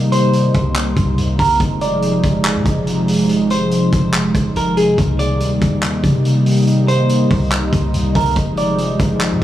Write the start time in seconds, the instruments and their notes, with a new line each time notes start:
Already playing: 808-style bass C3, analog synth pad C3 G3 A#3 D#4
0.12 clean electric guitar C5, closed hi-hat
0.33 closed hi-hat
0.54 808-style bass C2, kick, closed hi-hat
0.75 clap, closed hi-hat
0.97 808-style bass C2, kick, closed hi-hat
1.18 808-style bass C2, closed hi-hat
1.39 808-style bass C2, clean electric guitar A#4, kick, closed hi-hat
1.44 closed hi-hat
1.49 closed hi-hat
1.55 closed hi-hat
1.60 808-style bass F1, analog synth pad F3 G#3 D#4, kick, closed hi-hat
1.81 clean electric guitar D5, closed hi-hat
2.02 closed hi-hat
2.23 808-style bass F1, kick, closed hi-hat
2.44 clap, closed hi-hat
2.55 808-style bass C3
2.66 808-style bass F1, kick, closed hi-hat
2.87 closed hi-hat
3.08 closed hi-hat
3.13 closed hi-hat
3.19 closed hi-hat
3.24 closed hi-hat
3.29 closed hi-hat
3.50 clean electric guitar C5, closed hi-hat
3.71 closed hi-hat
3.92 808-style bass F1, kick, closed hi-hat
4.13 clap, closed hi-hat
4.35 808-style bass F1, kick, closed hi-hat
4.56 808-style bass F1, clean electric guitar A#4, closed hi-hat
4.77 clean electric guitar G#4, closed hi-hat
4.98 808-style bass C2, analog synth pad G3 A#3, kick, closed hi-hat
5.19 clean electric guitar D5, closed hi-hat
5.40 808-style bass D2, closed hi-hat
5.61 808-style bass D#2, kick, closed hi-hat
5.83 clap, closed hi-hat
6.04 808-style bass C3, kick, closed hi-hat
6.25 closed hi-hat
6.46 closed hi-hat
6.51 closed hi-hat
6.57 closed hi-hat
6.62 closed hi-hat
6.67 closed hi-hat
6.88 clean electric guitar C5, closed hi-hat
7.09 closed hi-hat
7.30 808-style bass C2, kick, open hi-hat
7.52 clap, closed hi-hat
7.73 808-style bass C2, kick, closed hi-hat
7.94 808-style bass C2, closed hi-hat
8.15 808-style bass C2, clean electric guitar A#4, kick, closed hi-hat
8.20 closed hi-hat
8.26 closed hi-hat
8.31 closed hi-hat
8.36 808-style bass F1, analog synth pad C3 F3 G#3, kick, closed hi-hat
8.57 clean electric guitar D5, closed hi-hat
8.78 closed hi-hat
8.99 808-style bass F1, kick, closed hi-hat
9.21 clap, closed hi-hat
9.31 808-style bass C3